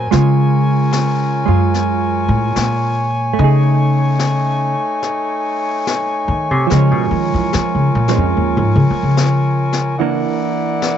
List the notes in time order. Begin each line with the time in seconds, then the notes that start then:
Already playing: F#3 C4 A#4 G#5
0.10 C#3 G#3 F4 C#5, brush sweep, snare
0.92 snare
1.46 F#2 G#3 F4
1.74 brush sweep, snare
2.28 A2
2.56 A#2, snare
3.33 A3, brush sweep
3.38 C#3 A3 D#4
3.44 G#4
4.19 snare
5.03 brush sweep, snare
5.87 snare
6.28 D#3
6.51 C3
6.67 F3 F4 A#4, brush sweep, snare
6.71 C#3 G#3
6.77 C#4
6.91 B2
7.11 D#3
7.34 E3
7.53 F3, snare
7.75 C#3
7.95 A#2
8.08 F3 G#3 C#4, snare
8.17 F2
8.35 D#2, brush sweep
8.57 G#2
8.76 C#3
8.90 F3
9.03 C#3
9.17 snare
9.73 snare
9.98 E3 A#3 D4 E4 D5 F#5, brush sweep
10.82 snare